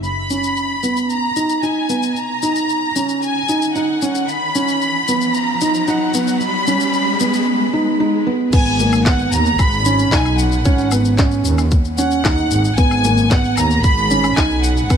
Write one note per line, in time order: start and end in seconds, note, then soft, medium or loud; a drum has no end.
0.03 1.06 B5 loud
0.03 riser medium
0.03 shaker soft
0.30 0.72 C#4 medium
0.30 shaker medium
0.44 shaker soft
0.57 shaker soft
0.83 1.26 B3 medium
0.83 shaker medium
0.97 shaker soft
1.10 1.63 A#5 loud
1.10 shaker soft
1.36 1.57 D#4 medium
1.36 shaker medium
1.50 shaker soft
1.63 1.84 D#4 medium
1.63 2.16 G#5 medium
1.63 shaker soft
1.89 2.11 B3 medium
1.89 shaker medium
2.03 shaker soft
2.16 3.22 A#5 loud
2.16 shaker soft
2.43 2.85 D#4 medium
2.43 shaker medium
2.56 shaker soft
2.69 shaker soft
2.96 3.38 C#4 medium
2.96 shaker medium
3.09 shaker soft
3.22 3.72 G#5 loud
3.22 shaker soft
3.49 3.70 D#4 medium
3.49 shaker medium
3.62 shaker soft
3.75 3.97 D#4 medium
3.75 4.29 F#5 medium
3.75 shaker soft
4.02 4.23 C#4 medium
4.02 shaker medium
4.15 shaker soft
4.29 5.35 B5 loud
4.29 shaker soft
4.55 4.97 C#4 medium
4.55 shaker medium
4.68 shaker soft
4.82 shaker soft
5.08 5.51 B3 medium
5.08 shaker medium
5.21 shaker soft
5.34 5.88 A#5 loud
5.34 shaker soft
5.61 5.83 D#4 medium
5.61 shaker medium
5.74 shaker soft
5.88 6.09 D#4 medium
5.88 6.41 F#5 medium
5.88 shaker soft
6.14 6.36 B3 medium
6.14 shaker medium
6.27 shaker soft
6.41 7.43 B5 loud
6.41 shaker soft
6.67 7.10 C#4 medium
6.67 shaker medium
6.80 shaker soft
6.93 shaker soft
7.20 7.63 B3 medium
7.20 shaker medium
7.33 shaker soft
7.47 swell medium
7.73 7.95 D#4 medium
8.00 8.21 D#4 medium
8.27 8.48 B3 medium
8.53 9.29 G#1 medium
8.53 8.74 B3 loud
8.53 9.02 G#5 medium
8.53 kick loud
8.53 crash loud
8.53 shaker soft
8.66 shaker soft
8.79 9.01 A#3 medium
8.79 shaker medium
8.93 low woodblock medium
8.93 shaker soft
9.06 9.49 B3 medium
9.06 9.33 F#5 medium
9.06 kick loud
9.06 clap loud
9.06 shaker soft
9.19 shaker soft
9.32 9.55 D#2 medium
9.32 9.59 A#5 loud
9.32 shaker medium
9.46 shaker soft
9.59 10.09 G#1 loud
9.59 10.12 B5 loud
9.59 kick loud
9.59 low woodblock medium
9.59 shaker soft
9.72 shaker soft
9.85 10.07 C#4 medium
9.85 shaker medium
9.99 shaker soft
10.12 10.66 B1 medium
10.12 10.55 D#4 medium
10.12 10.39 G#5 loud
10.12 kick medium
10.12 clap loud
10.12 shaker soft
10.25 low woodblock medium
10.25 shaker soft
10.39 11.19 F#5 medium
10.39 shaker medium
10.52 shaker soft
10.65 11.42 G#1 medium
10.65 10.87 C#4 medium
10.65 kick loud
10.65 shaker soft
10.78 shaker soft
10.92 11.13 B3 medium
10.92 low woodblock medium
10.92 shaker medium
11.05 shaker soft
11.18 11.61 C#4 medium
11.18 kick loud
11.18 clap loud
11.18 shaker soft
11.31 shaker soft
11.45 11.67 D#2 medium
11.45 shaker medium
11.58 low woodblock medium
11.58 shaker soft
11.71 kick loud
11.71 shaker soft
11.85 shaker soft
11.98 12.19 C#4 medium
11.98 12.74 F#5 medium
11.98 shaker medium
12.11 shaker soft
12.25 12.47 D#2 medium
12.25 12.67 D#4 medium
12.25 kick loud
12.25 clap loud
12.25 low woodblock medium
12.25 shaker soft
12.38 shaker soft
12.51 12.73 G#1 loud
12.51 shaker medium
12.65 shaker soft
12.77 13.54 G#1 loud
12.77 12.99 B3 medium
12.77 13.31 G#5 loud
12.77 kick loud
12.77 shaker soft
12.91 low woodblock medium
12.91 shaker soft
13.04 13.26 A#3 medium
13.04 shaker medium
13.17 shaker soft
13.30 13.73 B3 medium
13.30 13.57 F#5 loud
13.30 kick loud
13.30 clap loud
13.30 shaker soft
13.44 shaker soft
13.57 13.80 D#2 medium
13.57 13.84 A#5 loud
13.57 low woodblock medium
13.57 shaker medium
13.71 shaker soft
13.84 14.34 G#1 loud
13.84 14.33 B5 loud
13.84 kick loud
13.84 shaker soft
13.97 shaker soft
14.10 14.32 C#4 medium
14.10 shaker medium
14.24 low woodblock medium
14.24 shaker soft
14.37 14.87 B1 medium
14.37 14.79 D#4 medium
14.37 14.64 G#5 loud
14.37 kick loud
14.37 clap loud
14.37 shaker soft
14.51 shaker soft
14.63 14.97 F#5 medium
14.63 shaker medium
14.77 shaker soft
14.90 14.97 G#1 medium
14.90 14.97 B3 medium
14.90 kick loud
14.90 low woodblock medium
14.90 shaker soft